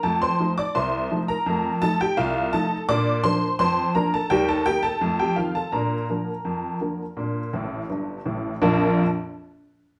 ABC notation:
X:1
M:2/4
L:1/16
Q:1/4=84
K:Bb
V:1 name="Honky-tonk piano"
[Aa] [cc']2 [dd'] [cc']3 [Bb]- | [Bb]2 [Aa] [Gg] [Ff]2 [Aa]2 | [dd']2 [cc']2 [cc']2 [Bb] [Aa] | [Gg] [Aa] [Gg] [Aa]2 [Gg] [Ff] [Aa] |
[Bb]8- | [Bb]4 z4 | [B,,,F,,F,B,DF]2 z6 |]
V:2 name="Honky-tonk piano" clef=bass
[F,,A,]2 [F,A,E]2 C,,2 [F,A,E]2 | [F,,A,]2 [F,A,E]2 C,,2 [F,A,E]2 | [B,,D]2 [F,B,D]2 F,,2 [F,B,D]2 | [E,,G,]2 [E,B,E]2 [F,,A,]2 [E,F,C]2 |
[B,,D]2 [D,F,B,]2 F,,2 [D,F,B,]2 | [B,,D]2 [A,,,A,,]2 [G,,,G,,]2 [A,,,A,,]2 | z8 |]